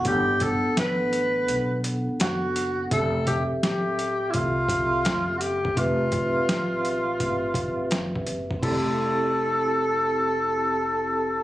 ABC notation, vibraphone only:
X:1
M:4/4
L:1/8
Q:"Swing 16ths" 1/4=84
K:Flyd
V:1 name="Vibraphone"
[B,DA^f]8 | [CGAe]8 | [CGBe]8 | [CEGA]8 |]